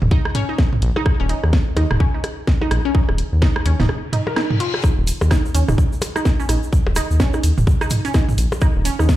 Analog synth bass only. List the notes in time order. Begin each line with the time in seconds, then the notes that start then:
0.02 D#1
0.82 A#1
1.20 D#1
1.43 D#2
1.77 D#2
1.91 D#1
2.71 A#1
3.09 D#1
3.32 D#2
3.66 D#2
3.80 D#1
4.98 D#1
5.21 D#2
5.55 D#2
5.69 D#1
6.49 A#1
6.87 D#1
7.10 D#2
7.44 D#2
7.58 D#1
8.38 A#1
8.76 D#1
8.99 D#2